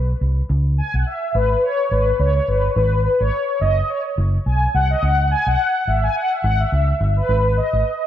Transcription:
Already playing: B1
0.21 C2
0.50 C#2
0.78 G#5
0.94 B1 F#5
1.07 E5
1.35 G#1 B4
1.63 C#5
1.91 G#1 B4
2.19 C#2 C#5
2.35 C#5
2.48 G1 B4
2.70 C#5
2.76 G#1 B4
3.20 G#1 C#5
3.61 F#1 D#5
3.89 C#5
4.18 F#1
4.46 B1 G#5
4.74 C2 F#5
4.91 D#5
5.03 C#2 F#5
5.31 G#5
5.47 B1 F#5
5.87 G#1 E5
6.03 G#5
6.16 F#5
6.32 E5
6.44 G#1 F#5
6.60 E5
6.72 C#2 E5
7.00 G1
7.17 B4
7.29 G#1
7.57 D#5
7.73 G#1

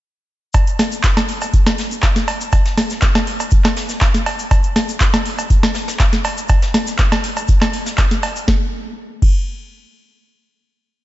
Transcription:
0.54 kick, closed hi-hat, cowbell, shaker
0.67 closed hi-hat, shaker
0.79 snare, closed hi-hat, open hi-hat, cowbell
0.92 closed hi-hat, shaker
1.04 kick, snare, clap, closed hi-hat, shaker
1.17 snare, closed hi-hat, cowbell, shaker
1.28 closed hi-hat, open hi-hat
1.42 closed hi-hat, cowbell, shaker
1.54 kick, closed hi-hat, shaker
1.66 snare, closed hi-hat, cowbell, shaker
1.78 snare, closed hi-hat, open hi-hat
1.91 closed hi-hat, shaker
2.03 kick, snare, clap, closed hi-hat, cowbell, shaker
2.16 snare, closed hi-hat, shaker
2.28 closed hi-hat, open hi-hat, cowbell
2.41 closed hi-hat, shaker
2.53 kick, closed hi-hat, cowbell, shaker
2.65 snare, closed hi-hat, shaker
2.78 snare, closed hi-hat, open hi-hat, cowbell
2.90 snare, closed hi-hat, shaker
3.02 kick, snare, clap, closed hi-hat, shaker
3.15 snare, closed hi-hat, cowbell, shaker
3.27 closed hi-hat, open hi-hat
3.40 closed hi-hat, cowbell, shaker
3.51 kick, closed hi-hat, shaker
3.64 snare, clap, closed hi-hat, cowbell, shaker
3.77 snare, closed hi-hat, open hi-hat
3.89 snare, closed hi-hat, shaker
4.01 kick, snare, clap, closed hi-hat, cowbell, shaker
4.14 snare, closed hi-hat, shaker
4.26 closed hi-hat, open hi-hat, cowbell
4.39 open hi-hat, shaker
4.51 kick, closed hi-hat, cowbell, shaker
4.63 closed hi-hat, shaker
4.76 snare, closed hi-hat, open hi-hat, cowbell
4.89 closed hi-hat, shaker
5.00 kick, snare, clap, closed hi-hat, shaker
5.14 snare, closed hi-hat, cowbell, shaker
5.25 closed hi-hat, open hi-hat
5.39 closed hi-hat, cowbell, shaker
5.50 kick, closed hi-hat, shaker
5.63 snare, closed hi-hat, cowbell, shaker
5.74 snare, closed hi-hat, open hi-hat
5.88 snare, closed hi-hat, shaker
5.99 kick, snare, clap, closed hi-hat, cowbell, shaker
6.13 snare, closed hi-hat, shaker
6.24 closed hi-hat, open hi-hat, cowbell
6.37 closed hi-hat, shaker
6.49 kick, closed hi-hat, cowbell, shaker
6.62 snare, closed hi-hat, shaker
6.74 snare, closed hi-hat, open hi-hat, cowbell
6.87 snare, closed hi-hat, shaker
6.98 kick, snare, clap, closed hi-hat, shaker
7.12 snare, closed hi-hat, cowbell, shaker
7.24 closed hi-hat, open hi-hat
7.37 closed hi-hat, cowbell, shaker
7.48 kick, closed hi-hat, shaker
7.61 snare, clap, closed hi-hat, cowbell, shaker
7.73 closed hi-hat, open hi-hat
7.86 snare, closed hi-hat, shaker
7.98 kick, snare, clap, closed hi-hat, open hi-hat, cowbell, shaker
8.11 snare, closed hi-hat, shaker
8.22 closed hi-hat, open hi-hat, cowbell
8.36 open hi-hat, shaker
8.48 kick, snare
9.22 kick, crash

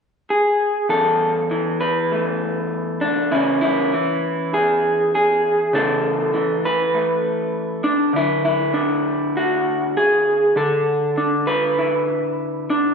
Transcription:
0.30 G#4
0.89 E2 A4
1.51 E3
1.81 B4
2.12 A3
3.01 D4
3.31 C#3 E3 C#4 E4
3.61 E4
3.93 E3
4.54 G#4
5.15 G#4
5.73 C#3 E3 A3 A4
6.33 E3
6.65 B4
6.95 A3
7.84 D4
8.13 D3 E4
8.45 E4
8.74 D4
9.37 F#4
9.97 G#4
10.56 D3 A4
11.18 D4
11.47 B4
11.79 E4
12.70 D4

